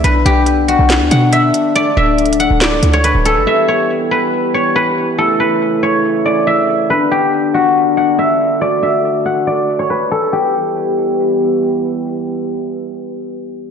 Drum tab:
HH |x-----x-----x-----x-----x-----x-----x-----x-----|x-----------x-x-x-x-----x-----x--x--x-----x-----|------------------------------------------------|------------------------------------------------|
CP |------------------------x-----------------------|------------------------x-----------------------|------------------------------------------------|------------------------------------------------|
SD |------------------------o-----------------------|------------------------o-----------------------|------------------------------------------------|------------------------------------------------|

HH |------------------------------------------------|------------------------------------------------|------------------------------------------------|------------------------------------------------|
CP |------------------------------------------------|------------------------------------------------|------------------------------------------------|------------------------------------------------|
SD |------------------------------------------------|------------------------------------------------|------------------------------------------------|------------------------------------------------|